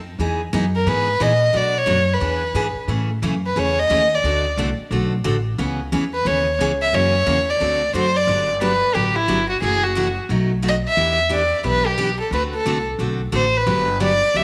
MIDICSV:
0, 0, Header, 1, 5, 480
1, 0, Start_track
1, 0, Tempo, 336889
1, 279, Time_signature, 4, 2, 24, 8
1, 20571, End_track
2, 0, Start_track
2, 0, Title_t, "Violin"
2, 0, Program_c, 0, 40
2, 1078, Note_on_c, 0, 70, 85
2, 1258, Note_on_c, 0, 71, 92
2, 1279, Note_off_c, 0, 70, 0
2, 1739, Note_on_c, 0, 75, 101
2, 1761, Note_off_c, 0, 71, 0
2, 2230, Note_on_c, 0, 74, 95
2, 2251, Note_off_c, 0, 75, 0
2, 2537, Note_on_c, 0, 73, 104
2, 2558, Note_off_c, 0, 74, 0
2, 3046, Note_on_c, 0, 71, 85
2, 3067, Note_off_c, 0, 73, 0
2, 3967, Note_off_c, 0, 71, 0
2, 4934, Note_on_c, 0, 71, 78
2, 5105, Note_on_c, 0, 73, 93
2, 5126, Note_off_c, 0, 71, 0
2, 5397, Note_on_c, 0, 75, 110
2, 5418, Note_off_c, 0, 73, 0
2, 5904, Note_on_c, 0, 74, 95
2, 5925, Note_off_c, 0, 75, 0
2, 6543, Note_off_c, 0, 74, 0
2, 8744, Note_on_c, 0, 71, 80
2, 8934, Note_on_c, 0, 73, 89
2, 8955, Note_off_c, 0, 71, 0
2, 9404, Note_off_c, 0, 73, 0
2, 9720, Note_on_c, 0, 76, 97
2, 9895, Note_on_c, 0, 73, 109
2, 9916, Note_off_c, 0, 76, 0
2, 10685, Note_on_c, 0, 74, 90
2, 10707, Note_off_c, 0, 73, 0
2, 11334, Note_off_c, 0, 74, 0
2, 11346, Note_on_c, 0, 72, 104
2, 11626, Note_on_c, 0, 74, 101
2, 11648, Note_off_c, 0, 72, 0
2, 12096, Note_off_c, 0, 74, 0
2, 12276, Note_on_c, 0, 71, 91
2, 12743, Note_on_c, 0, 67, 85
2, 12765, Note_off_c, 0, 71, 0
2, 13040, Note_on_c, 0, 64, 94
2, 13062, Note_off_c, 0, 67, 0
2, 13523, Note_off_c, 0, 64, 0
2, 13529, Note_on_c, 0, 66, 78
2, 13702, Note_off_c, 0, 66, 0
2, 13732, Note_on_c, 0, 68, 94
2, 14012, Note_on_c, 0, 66, 78
2, 14033, Note_off_c, 0, 68, 0
2, 14489, Note_off_c, 0, 66, 0
2, 15220, Note_on_c, 0, 75, 95
2, 15337, Note_off_c, 0, 75, 0
2, 15506, Note_on_c, 0, 76, 99
2, 15925, Note_off_c, 0, 76, 0
2, 16133, Note_on_c, 0, 74, 87
2, 16571, Note_off_c, 0, 74, 0
2, 16629, Note_on_c, 0, 71, 99
2, 16901, Note_on_c, 0, 67, 89
2, 16923, Note_off_c, 0, 71, 0
2, 17375, Note_off_c, 0, 67, 0
2, 17383, Note_on_c, 0, 69, 73
2, 17550, Note_off_c, 0, 69, 0
2, 17575, Note_on_c, 0, 71, 88
2, 17702, Note_off_c, 0, 71, 0
2, 17873, Note_on_c, 0, 69, 87
2, 18309, Note_off_c, 0, 69, 0
2, 19030, Note_on_c, 0, 72, 90
2, 19341, Note_on_c, 0, 71, 91
2, 19362, Note_off_c, 0, 72, 0
2, 19980, Note_off_c, 0, 71, 0
2, 19988, Note_on_c, 0, 74, 100
2, 20464, Note_on_c, 0, 76, 100
2, 20486, Note_off_c, 0, 74, 0
2, 20571, Note_off_c, 0, 76, 0
2, 20571, End_track
3, 0, Start_track
3, 0, Title_t, "Steel-string acoustic guitar"
3, 0, Program_c, 1, 25
3, 278, Note_on_c, 1, 52, 62
3, 284, Note_on_c, 1, 59, 71
3, 289, Note_on_c, 1, 63, 72
3, 291, Note_on_c, 1, 68, 77
3, 572, Note_off_c, 1, 52, 0
3, 575, Note_off_c, 1, 59, 0
3, 578, Note_off_c, 1, 63, 0
3, 579, Note_off_c, 1, 68, 0
3, 754, Note_on_c, 1, 52, 83
3, 754, Note_on_c, 1, 59, 93
3, 767, Note_on_c, 1, 68, 88
3, 768, Note_on_c, 1, 63, 104
3, 912, Note_off_c, 1, 52, 0
3, 912, Note_off_c, 1, 59, 0
3, 919, Note_off_c, 1, 68, 0
3, 920, Note_off_c, 1, 63, 0
3, 1235, Note_on_c, 1, 52, 60
3, 1238, Note_on_c, 1, 59, 69
3, 1244, Note_on_c, 1, 63, 67
3, 1251, Note_on_c, 1, 68, 70
3, 1531, Note_off_c, 1, 52, 0
3, 1532, Note_off_c, 1, 59, 0
3, 1535, Note_off_c, 1, 63, 0
3, 1538, Note_off_c, 1, 68, 0
3, 1712, Note_on_c, 1, 52, 91
3, 1720, Note_on_c, 1, 63, 97
3, 1724, Note_on_c, 1, 59, 95
3, 1728, Note_on_c, 1, 68, 98
3, 1870, Note_off_c, 1, 52, 0
3, 1875, Note_off_c, 1, 63, 0
3, 1877, Note_off_c, 1, 59, 0
3, 1879, Note_off_c, 1, 68, 0
3, 2177, Note_on_c, 1, 47, 65
3, 2185, Note_on_c, 1, 54, 66
3, 2186, Note_on_c, 1, 57, 67
3, 2190, Note_on_c, 1, 66, 72
3, 2191, Note_on_c, 1, 62, 77
3, 2481, Note_off_c, 1, 47, 0
3, 2485, Note_off_c, 1, 54, 0
3, 2485, Note_off_c, 1, 57, 0
3, 2487, Note_off_c, 1, 66, 0
3, 2488, Note_off_c, 1, 62, 0
3, 2650, Note_on_c, 1, 47, 96
3, 2661, Note_on_c, 1, 54, 81
3, 2664, Note_on_c, 1, 62, 98
3, 2666, Note_on_c, 1, 57, 86
3, 2667, Note_on_c, 1, 66, 87
3, 2819, Note_off_c, 1, 47, 0
3, 2825, Note_off_c, 1, 54, 0
3, 2826, Note_off_c, 1, 62, 0
3, 2827, Note_off_c, 1, 57, 0
3, 2828, Note_off_c, 1, 66, 0
3, 3139, Note_on_c, 1, 52, 62
3, 3151, Note_on_c, 1, 59, 63
3, 3151, Note_on_c, 1, 68, 67
3, 3153, Note_on_c, 1, 62, 77
3, 3442, Note_off_c, 1, 52, 0
3, 3447, Note_off_c, 1, 59, 0
3, 3447, Note_off_c, 1, 68, 0
3, 3449, Note_off_c, 1, 62, 0
3, 3630, Note_on_c, 1, 52, 87
3, 3635, Note_on_c, 1, 59, 90
3, 3638, Note_on_c, 1, 62, 92
3, 3644, Note_on_c, 1, 68, 92
3, 3789, Note_off_c, 1, 52, 0
3, 3792, Note_off_c, 1, 59, 0
3, 3793, Note_off_c, 1, 62, 0
3, 3796, Note_off_c, 1, 68, 0
3, 4106, Note_on_c, 1, 52, 62
3, 4113, Note_on_c, 1, 49, 57
3, 4114, Note_on_c, 1, 57, 70
3, 4114, Note_on_c, 1, 61, 64
3, 4119, Note_on_c, 1, 68, 76
3, 4405, Note_off_c, 1, 52, 0
3, 4409, Note_off_c, 1, 49, 0
3, 4409, Note_off_c, 1, 57, 0
3, 4409, Note_off_c, 1, 61, 0
3, 4411, Note_off_c, 1, 68, 0
3, 4596, Note_on_c, 1, 52, 92
3, 4598, Note_on_c, 1, 49, 89
3, 4601, Note_on_c, 1, 61, 91
3, 4607, Note_on_c, 1, 57, 92
3, 4610, Note_on_c, 1, 68, 90
3, 4752, Note_off_c, 1, 52, 0
3, 4753, Note_off_c, 1, 49, 0
3, 4754, Note_off_c, 1, 61, 0
3, 4758, Note_off_c, 1, 57, 0
3, 4759, Note_off_c, 1, 68, 0
3, 5070, Note_on_c, 1, 49, 61
3, 5074, Note_on_c, 1, 52, 66
3, 5084, Note_on_c, 1, 57, 61
3, 5088, Note_on_c, 1, 61, 73
3, 5088, Note_on_c, 1, 68, 72
3, 5367, Note_off_c, 1, 49, 0
3, 5369, Note_off_c, 1, 52, 0
3, 5374, Note_off_c, 1, 57, 0
3, 5376, Note_off_c, 1, 61, 0
3, 5376, Note_off_c, 1, 68, 0
3, 5552, Note_on_c, 1, 49, 88
3, 5557, Note_on_c, 1, 52, 85
3, 5559, Note_on_c, 1, 57, 98
3, 5566, Note_on_c, 1, 61, 95
3, 5567, Note_on_c, 1, 68, 89
3, 5710, Note_off_c, 1, 49, 0
3, 5713, Note_off_c, 1, 52, 0
3, 5714, Note_off_c, 1, 57, 0
3, 5717, Note_off_c, 1, 61, 0
3, 5717, Note_off_c, 1, 68, 0
3, 6049, Note_on_c, 1, 50, 71
3, 6049, Note_on_c, 1, 57, 67
3, 6056, Note_on_c, 1, 60, 68
3, 6061, Note_on_c, 1, 69, 68
3, 6062, Note_on_c, 1, 66, 71
3, 6337, Note_off_c, 1, 50, 0
3, 6337, Note_off_c, 1, 57, 0
3, 6340, Note_off_c, 1, 60, 0
3, 6342, Note_off_c, 1, 69, 0
3, 6343, Note_off_c, 1, 66, 0
3, 6519, Note_on_c, 1, 50, 80
3, 6529, Note_on_c, 1, 57, 85
3, 6531, Note_on_c, 1, 60, 90
3, 6534, Note_on_c, 1, 66, 96
3, 6537, Note_on_c, 1, 69, 97
3, 6674, Note_off_c, 1, 50, 0
3, 6679, Note_off_c, 1, 57, 0
3, 6680, Note_off_c, 1, 60, 0
3, 6681, Note_off_c, 1, 66, 0
3, 6682, Note_off_c, 1, 69, 0
3, 6997, Note_on_c, 1, 50, 67
3, 7009, Note_on_c, 1, 60, 67
3, 7013, Note_on_c, 1, 57, 66
3, 7013, Note_on_c, 1, 69, 67
3, 7017, Note_on_c, 1, 66, 67
3, 7291, Note_off_c, 1, 50, 0
3, 7297, Note_off_c, 1, 60, 0
3, 7299, Note_off_c, 1, 57, 0
3, 7299, Note_off_c, 1, 69, 0
3, 7301, Note_off_c, 1, 66, 0
3, 7469, Note_on_c, 1, 50, 92
3, 7470, Note_on_c, 1, 60, 88
3, 7471, Note_on_c, 1, 57, 83
3, 7472, Note_on_c, 1, 66, 96
3, 7478, Note_on_c, 1, 69, 107
3, 7629, Note_off_c, 1, 50, 0
3, 7629, Note_off_c, 1, 60, 0
3, 7630, Note_off_c, 1, 57, 0
3, 7630, Note_off_c, 1, 66, 0
3, 7633, Note_off_c, 1, 69, 0
3, 7956, Note_on_c, 1, 49, 73
3, 7962, Note_on_c, 1, 52, 66
3, 7964, Note_on_c, 1, 61, 71
3, 7965, Note_on_c, 1, 59, 79
3, 7971, Note_on_c, 1, 68, 65
3, 8250, Note_off_c, 1, 49, 0
3, 8253, Note_off_c, 1, 52, 0
3, 8254, Note_off_c, 1, 61, 0
3, 8255, Note_off_c, 1, 59, 0
3, 8257, Note_off_c, 1, 68, 0
3, 8437, Note_on_c, 1, 49, 87
3, 8441, Note_on_c, 1, 52, 88
3, 8445, Note_on_c, 1, 59, 89
3, 8445, Note_on_c, 1, 61, 96
3, 8452, Note_on_c, 1, 68, 92
3, 8593, Note_off_c, 1, 49, 0
3, 8595, Note_off_c, 1, 52, 0
3, 8597, Note_off_c, 1, 59, 0
3, 8597, Note_off_c, 1, 61, 0
3, 8600, Note_off_c, 1, 68, 0
3, 8918, Note_on_c, 1, 59, 76
3, 8919, Note_on_c, 1, 49, 67
3, 8919, Note_on_c, 1, 52, 68
3, 8924, Note_on_c, 1, 61, 68
3, 8933, Note_on_c, 1, 68, 69
3, 9211, Note_off_c, 1, 49, 0
3, 9211, Note_off_c, 1, 52, 0
3, 9211, Note_off_c, 1, 59, 0
3, 9214, Note_off_c, 1, 61, 0
3, 9218, Note_off_c, 1, 68, 0
3, 9410, Note_on_c, 1, 49, 80
3, 9411, Note_on_c, 1, 52, 86
3, 9415, Note_on_c, 1, 61, 95
3, 9417, Note_on_c, 1, 68, 105
3, 9419, Note_on_c, 1, 59, 98
3, 9559, Note_off_c, 1, 49, 0
3, 9560, Note_off_c, 1, 52, 0
3, 9561, Note_off_c, 1, 61, 0
3, 9562, Note_off_c, 1, 68, 0
3, 9563, Note_off_c, 1, 59, 0
3, 9883, Note_on_c, 1, 49, 61
3, 9887, Note_on_c, 1, 58, 67
3, 9889, Note_on_c, 1, 52, 67
3, 9890, Note_on_c, 1, 61, 72
3, 9892, Note_on_c, 1, 66, 68
3, 10173, Note_off_c, 1, 49, 0
3, 10175, Note_off_c, 1, 58, 0
3, 10176, Note_off_c, 1, 52, 0
3, 10177, Note_off_c, 1, 61, 0
3, 10178, Note_off_c, 1, 66, 0
3, 10349, Note_on_c, 1, 58, 95
3, 10351, Note_on_c, 1, 49, 90
3, 10353, Note_on_c, 1, 52, 83
3, 10353, Note_on_c, 1, 61, 97
3, 10359, Note_on_c, 1, 66, 88
3, 10508, Note_off_c, 1, 58, 0
3, 10509, Note_off_c, 1, 49, 0
3, 10510, Note_off_c, 1, 52, 0
3, 10510, Note_off_c, 1, 61, 0
3, 10513, Note_off_c, 1, 66, 0
3, 10829, Note_on_c, 1, 57, 64
3, 10832, Note_on_c, 1, 50, 67
3, 10838, Note_on_c, 1, 60, 69
3, 10842, Note_on_c, 1, 66, 68
3, 10845, Note_on_c, 1, 69, 72
3, 11126, Note_off_c, 1, 57, 0
3, 11127, Note_off_c, 1, 50, 0
3, 11131, Note_off_c, 1, 60, 0
3, 11132, Note_off_c, 1, 66, 0
3, 11134, Note_off_c, 1, 69, 0
3, 11315, Note_on_c, 1, 50, 85
3, 11321, Note_on_c, 1, 57, 84
3, 11325, Note_on_c, 1, 66, 91
3, 11329, Note_on_c, 1, 60, 85
3, 11332, Note_on_c, 1, 69, 96
3, 11471, Note_off_c, 1, 50, 0
3, 11474, Note_off_c, 1, 57, 0
3, 11476, Note_off_c, 1, 66, 0
3, 11478, Note_off_c, 1, 60, 0
3, 11479, Note_off_c, 1, 69, 0
3, 11792, Note_on_c, 1, 54, 58
3, 11797, Note_on_c, 1, 50, 61
3, 11799, Note_on_c, 1, 62, 66
3, 11801, Note_on_c, 1, 59, 64
3, 11805, Note_on_c, 1, 67, 70
3, 12087, Note_off_c, 1, 54, 0
3, 12090, Note_off_c, 1, 50, 0
3, 12091, Note_off_c, 1, 62, 0
3, 12092, Note_off_c, 1, 59, 0
3, 12094, Note_off_c, 1, 67, 0
3, 12268, Note_on_c, 1, 50, 80
3, 12272, Note_on_c, 1, 59, 89
3, 12272, Note_on_c, 1, 62, 79
3, 12275, Note_on_c, 1, 54, 86
3, 12279, Note_on_c, 1, 67, 88
3, 12427, Note_off_c, 1, 50, 0
3, 12429, Note_off_c, 1, 59, 0
3, 12430, Note_off_c, 1, 62, 0
3, 12431, Note_off_c, 1, 54, 0
3, 12433, Note_off_c, 1, 67, 0
3, 12747, Note_on_c, 1, 54, 63
3, 12748, Note_on_c, 1, 50, 64
3, 12752, Note_on_c, 1, 59, 69
3, 12756, Note_on_c, 1, 62, 68
3, 12757, Note_on_c, 1, 67, 69
3, 13045, Note_off_c, 1, 50, 0
3, 13045, Note_off_c, 1, 54, 0
3, 13047, Note_off_c, 1, 59, 0
3, 13049, Note_off_c, 1, 62, 0
3, 13049, Note_off_c, 1, 67, 0
3, 13221, Note_on_c, 1, 50, 82
3, 13223, Note_on_c, 1, 54, 87
3, 13223, Note_on_c, 1, 59, 91
3, 13231, Note_on_c, 1, 67, 99
3, 13236, Note_on_c, 1, 62, 95
3, 13384, Note_off_c, 1, 50, 0
3, 13385, Note_off_c, 1, 54, 0
3, 13385, Note_off_c, 1, 59, 0
3, 13389, Note_off_c, 1, 67, 0
3, 13391, Note_off_c, 1, 62, 0
3, 13709, Note_on_c, 1, 48, 64
3, 13712, Note_on_c, 1, 52, 61
3, 13718, Note_on_c, 1, 57, 66
3, 13721, Note_on_c, 1, 64, 64
3, 13729, Note_on_c, 1, 66, 77
3, 14006, Note_off_c, 1, 48, 0
3, 14007, Note_off_c, 1, 52, 0
3, 14010, Note_off_c, 1, 57, 0
3, 14012, Note_off_c, 1, 64, 0
3, 14016, Note_off_c, 1, 66, 0
3, 14183, Note_on_c, 1, 48, 93
3, 14192, Note_on_c, 1, 52, 88
3, 14198, Note_on_c, 1, 57, 85
3, 14200, Note_on_c, 1, 64, 81
3, 14203, Note_on_c, 1, 66, 94
3, 14345, Note_off_c, 1, 48, 0
3, 14349, Note_off_c, 1, 52, 0
3, 14352, Note_off_c, 1, 57, 0
3, 14353, Note_off_c, 1, 64, 0
3, 14355, Note_off_c, 1, 66, 0
3, 14673, Note_on_c, 1, 54, 60
3, 14674, Note_on_c, 1, 47, 70
3, 14678, Note_on_c, 1, 57, 67
3, 14679, Note_on_c, 1, 63, 76
3, 14685, Note_on_c, 1, 66, 70
3, 14968, Note_off_c, 1, 47, 0
3, 14968, Note_off_c, 1, 54, 0
3, 14971, Note_off_c, 1, 57, 0
3, 14971, Note_off_c, 1, 63, 0
3, 14974, Note_off_c, 1, 66, 0
3, 15137, Note_on_c, 1, 47, 86
3, 15141, Note_on_c, 1, 57, 89
3, 15143, Note_on_c, 1, 54, 84
3, 15145, Note_on_c, 1, 63, 94
3, 15156, Note_on_c, 1, 66, 90
3, 15302, Note_off_c, 1, 47, 0
3, 15304, Note_off_c, 1, 57, 0
3, 15305, Note_off_c, 1, 54, 0
3, 15306, Note_off_c, 1, 63, 0
3, 15311, Note_off_c, 1, 66, 0
3, 15628, Note_on_c, 1, 52, 69
3, 15629, Note_on_c, 1, 59, 65
3, 15635, Note_on_c, 1, 62, 68
3, 15638, Note_on_c, 1, 67, 65
3, 15926, Note_off_c, 1, 52, 0
3, 15926, Note_off_c, 1, 59, 0
3, 15929, Note_off_c, 1, 62, 0
3, 15931, Note_off_c, 1, 67, 0
3, 16089, Note_on_c, 1, 52, 80
3, 16092, Note_on_c, 1, 59, 88
3, 16103, Note_on_c, 1, 67, 95
3, 16106, Note_on_c, 1, 62, 93
3, 16258, Note_off_c, 1, 52, 0
3, 16260, Note_off_c, 1, 59, 0
3, 16265, Note_off_c, 1, 67, 0
3, 16266, Note_off_c, 1, 62, 0
3, 16577, Note_on_c, 1, 52, 57
3, 16580, Note_on_c, 1, 59, 72
3, 16585, Note_on_c, 1, 62, 72
3, 16590, Note_on_c, 1, 67, 66
3, 16880, Note_off_c, 1, 52, 0
3, 16882, Note_off_c, 1, 59, 0
3, 16884, Note_off_c, 1, 62, 0
3, 16887, Note_off_c, 1, 67, 0
3, 17064, Note_on_c, 1, 52, 87
3, 17065, Note_on_c, 1, 59, 92
3, 17072, Note_on_c, 1, 62, 91
3, 17075, Note_on_c, 1, 67, 97
3, 17226, Note_off_c, 1, 52, 0
3, 17226, Note_off_c, 1, 59, 0
3, 17230, Note_off_c, 1, 62, 0
3, 17231, Note_off_c, 1, 67, 0
3, 17560, Note_on_c, 1, 57, 67
3, 17565, Note_on_c, 1, 50, 60
3, 17570, Note_on_c, 1, 60, 71
3, 17570, Note_on_c, 1, 66, 66
3, 17575, Note_on_c, 1, 69, 75
3, 17852, Note_off_c, 1, 57, 0
3, 17855, Note_off_c, 1, 50, 0
3, 17857, Note_off_c, 1, 60, 0
3, 17857, Note_off_c, 1, 66, 0
3, 17860, Note_off_c, 1, 69, 0
3, 18033, Note_on_c, 1, 50, 84
3, 18036, Note_on_c, 1, 57, 78
3, 18044, Note_on_c, 1, 60, 94
3, 18047, Note_on_c, 1, 66, 84
3, 18047, Note_on_c, 1, 69, 89
3, 18191, Note_off_c, 1, 50, 0
3, 18192, Note_off_c, 1, 57, 0
3, 18197, Note_off_c, 1, 60, 0
3, 18198, Note_off_c, 1, 66, 0
3, 18198, Note_off_c, 1, 69, 0
3, 18509, Note_on_c, 1, 57, 59
3, 18512, Note_on_c, 1, 50, 66
3, 18519, Note_on_c, 1, 66, 68
3, 18521, Note_on_c, 1, 60, 66
3, 18530, Note_on_c, 1, 69, 71
3, 18808, Note_off_c, 1, 57, 0
3, 18809, Note_off_c, 1, 50, 0
3, 18813, Note_off_c, 1, 66, 0
3, 18814, Note_off_c, 1, 60, 0
3, 18818, Note_off_c, 1, 69, 0
3, 18980, Note_on_c, 1, 50, 79
3, 18981, Note_on_c, 1, 57, 92
3, 18985, Note_on_c, 1, 60, 81
3, 18985, Note_on_c, 1, 66, 92
3, 18991, Note_on_c, 1, 69, 92
3, 19145, Note_off_c, 1, 50, 0
3, 19146, Note_off_c, 1, 57, 0
3, 19148, Note_off_c, 1, 60, 0
3, 19148, Note_off_c, 1, 66, 0
3, 19151, Note_off_c, 1, 69, 0
3, 19471, Note_on_c, 1, 50, 62
3, 19471, Note_on_c, 1, 54, 68
3, 19473, Note_on_c, 1, 62, 73
3, 19479, Note_on_c, 1, 59, 69
3, 19479, Note_on_c, 1, 67, 70
3, 19769, Note_off_c, 1, 54, 0
3, 19770, Note_off_c, 1, 50, 0
3, 19771, Note_off_c, 1, 62, 0
3, 19773, Note_off_c, 1, 67, 0
3, 19774, Note_off_c, 1, 59, 0
3, 19951, Note_on_c, 1, 50, 87
3, 19951, Note_on_c, 1, 54, 85
3, 19952, Note_on_c, 1, 59, 89
3, 19957, Note_on_c, 1, 62, 87
3, 19963, Note_on_c, 1, 67, 88
3, 20112, Note_off_c, 1, 50, 0
3, 20112, Note_off_c, 1, 54, 0
3, 20112, Note_off_c, 1, 59, 0
3, 20115, Note_off_c, 1, 62, 0
3, 20118, Note_off_c, 1, 67, 0
3, 20452, Note_on_c, 1, 50, 63
3, 20452, Note_on_c, 1, 54, 61
3, 20453, Note_on_c, 1, 59, 73
3, 20458, Note_on_c, 1, 62, 69
3, 20464, Note_on_c, 1, 67, 75
3, 20571, Note_off_c, 1, 50, 0
3, 20571, Note_off_c, 1, 54, 0
3, 20571, Note_off_c, 1, 59, 0
3, 20571, Note_off_c, 1, 62, 0
3, 20571, Note_off_c, 1, 67, 0
3, 20571, End_track
4, 0, Start_track
4, 0, Title_t, "Upright bass"
4, 0, Program_c, 2, 32
4, 0, Note_on_c, 2, 41, 84
4, 256, Note_off_c, 2, 41, 0
4, 265, Note_on_c, 2, 40, 76
4, 737, Note_off_c, 2, 40, 0
4, 755, Note_on_c, 2, 42, 88
4, 1222, Note_off_c, 2, 42, 0
4, 1228, Note_on_c, 2, 44, 88
4, 1698, Note_off_c, 2, 44, 0
4, 1711, Note_on_c, 2, 46, 82
4, 2179, Note_off_c, 2, 46, 0
4, 2194, Note_on_c, 2, 47, 79
4, 2660, Note_off_c, 2, 47, 0
4, 2666, Note_on_c, 2, 42, 92
4, 3136, Note_off_c, 2, 42, 0
4, 3149, Note_on_c, 2, 40, 82
4, 3614, Note_off_c, 2, 40, 0
4, 3623, Note_on_c, 2, 44, 81
4, 3901, Note_off_c, 2, 44, 0
4, 4098, Note_on_c, 2, 45, 82
4, 4572, Note_off_c, 2, 45, 0
4, 4588, Note_on_c, 2, 42, 84
4, 5057, Note_off_c, 2, 42, 0
4, 5071, Note_on_c, 2, 40, 76
4, 5539, Note_off_c, 2, 40, 0
4, 5555, Note_on_c, 2, 39, 91
4, 6021, Note_off_c, 2, 39, 0
4, 6035, Note_on_c, 2, 38, 81
4, 6501, Note_off_c, 2, 38, 0
4, 6516, Note_on_c, 2, 36, 94
4, 6788, Note_off_c, 2, 36, 0
4, 6990, Note_on_c, 2, 35, 88
4, 7459, Note_off_c, 2, 35, 0
4, 7475, Note_on_c, 2, 33, 83
4, 7941, Note_off_c, 2, 33, 0
4, 7957, Note_on_c, 2, 37, 83
4, 8422, Note_off_c, 2, 37, 0
4, 8436, Note_on_c, 2, 40, 93
4, 8898, Note_off_c, 2, 40, 0
4, 8907, Note_on_c, 2, 39, 85
4, 9377, Note_off_c, 2, 39, 0
4, 9388, Note_on_c, 2, 37, 84
4, 9857, Note_off_c, 2, 37, 0
4, 9872, Note_on_c, 2, 42, 78
4, 10339, Note_off_c, 2, 42, 0
4, 10351, Note_on_c, 2, 40, 92
4, 10818, Note_off_c, 2, 40, 0
4, 10835, Note_on_c, 2, 38, 80
4, 11300, Note_off_c, 2, 38, 0
4, 11307, Note_on_c, 2, 42, 80
4, 11776, Note_off_c, 2, 42, 0
4, 11786, Note_on_c, 2, 31, 87
4, 12557, Note_off_c, 2, 31, 0
4, 12754, Note_on_c, 2, 33, 72
4, 13162, Note_off_c, 2, 33, 0
4, 13222, Note_on_c, 2, 31, 74
4, 13635, Note_off_c, 2, 31, 0
4, 13705, Note_on_c, 2, 30, 90
4, 14476, Note_off_c, 2, 30, 0
4, 14662, Note_on_c, 2, 35, 86
4, 15435, Note_off_c, 2, 35, 0
4, 15630, Note_on_c, 2, 40, 88
4, 16400, Note_off_c, 2, 40, 0
4, 16585, Note_on_c, 2, 35, 84
4, 17357, Note_off_c, 2, 35, 0
4, 17537, Note_on_c, 2, 38, 87
4, 17929, Note_off_c, 2, 38, 0
4, 18031, Note_on_c, 2, 36, 77
4, 18442, Note_off_c, 2, 36, 0
4, 18503, Note_on_c, 2, 35, 79
4, 18917, Note_off_c, 2, 35, 0
4, 18984, Note_on_c, 2, 33, 74
4, 19399, Note_off_c, 2, 33, 0
4, 19470, Note_on_c, 2, 31, 90
4, 20243, Note_off_c, 2, 31, 0
4, 20437, Note_on_c, 2, 38, 75
4, 20571, Note_off_c, 2, 38, 0
4, 20571, End_track
5, 0, Start_track
5, 0, Title_t, "Muted upright bass strokes"
5, 3915, Note_on_c, 9, 29, 42
5, 4057, Note_off_c, 9, 29, 0
5, 6812, Note_on_c, 9, 29, 43
5, 6955, Note_off_c, 9, 29, 0
5, 20571, End_track
0, 0, End_of_file